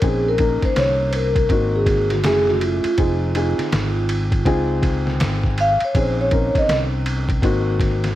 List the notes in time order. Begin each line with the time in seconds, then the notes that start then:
0.01 A#1 C4 C#4 D#4 G#4, kick, ride
0.28 A#4
0.38 A#3 C#4 D#4 A#4, kick, ride
0.62 C5, kick, snare, ride
0.76 C2 C#5, snare, hi-hat pedal, ride
1.11 C5, ride
1.15 A#4
1.36 kick, ride
1.49 G#1 A#3 C4 D#4 F#4, kick, ride
1.76 G#4
1.86 kick, snare, ride
2.10 F#4, snare, ride
2.24 F#1 A3 C#4 E4 G#4, snare, hi-hat pedal, ride
2.47 F#4, snare
2.61 F4, ride
2.84 muted fretless electric bass stroke, ride
2.98 F1 C4 D#4 F4 G#4, kick, ride
3.35 C4 D#4 F4 G#4, ride
3.59 muted fretless electric bass stroke, snare, ride
3.72 G#1, snare, hi-hat pedal, ride
4.09 ride
4.32 kick, ride
4.45 C#2 C4 D#4 F4 G#4, kick, ride
4.83 kick, snare, ride
5.07 snare
5.20 G#1, snare, hi-hat pedal, ride
5.43 kick, snare
5.58 F5, ride
5.80 muted fretless electric bass stroke, ride
5.85 C#5
5.94 A#1 C4 C#4 D#4 G#4, kick, ride
5.99 C5
6.21 C#5
6.31 C4 C#4 D#4 A#4, kick, ride
6.55 D#5, muted fretless electric bass stroke, kick, snare, ride
6.69 C2, snare, hi-hat pedal, ride
7.06 ride
7.29 kick, ride
7.42 G#1 A#3 C4 D#4 F#4, kick, ride
7.80 kick, snare, ride
8.04 snare, ride